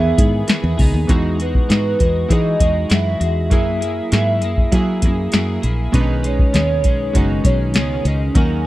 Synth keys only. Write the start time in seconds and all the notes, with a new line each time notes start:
Already playing: D#3 E3 B3 G#4
1.07 E3 G#3 D#4 F#4
2.29 E3 G#3 D#4 G#4
3.50 F#3 A#3 E4 G#4
4.72 F#3 A#3 E4 G#4
5.92 G#3 C#4 D4 B4
6.01 D#4
7.13 G#3 C#4 D#4 F#4
8.34 F#3 C#4 D#4 A#4